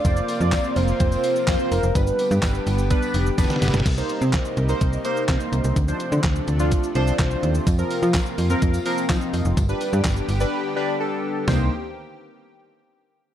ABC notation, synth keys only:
X:1
M:4/4
L:1/16
Q:1/4=126
K:Cdor
V:1 name="Synth keys"
[B,CFc]3 z [B,CFc]3 z [B,CFc]3 z [B,CFc]3 z | [G,=B,D=B]3 z [G,B,DB]3 z [G,B,DB]3 z [G,B,DB]3 z | z [B,Ec]4- [B,Ec] z [B,Ec]2 z [B,Ec]2 [B,Ec]4 | z [F,Dc]4- [F,Dc] z [F,DF]2 z [F,Dc]2 [F,Dc]4 |
z [F,CB]4- [F,CB] z [F,CB]2 z [F,CB]2 [F,CE]4 | z [G,D=B]4- [G,DB] z [G,DB]2 z [G,DB]2 [G,DA]4 | [B,Ec]2 z12 z2 |]